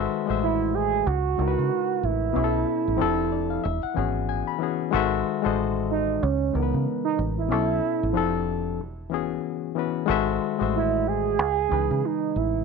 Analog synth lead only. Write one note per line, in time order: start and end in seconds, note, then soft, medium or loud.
0.43 0.76 E4 loud
0.74 1.08 G#4 loud
1.06 2.06 F#4 loud
2.04 4.61 E4 loud
5.91 6.24 D#4 loud
6.22 6.56 C#4 medium
6.54 7.04 B3 medium
7.05 7.19 D#4 loud
7.37 8.62 E4 loud
10.76 11.09 E4 loud
11.07 12.06 G#4 loud
12.05 12.39 D#4 loud
12.37 12.64 E4 medium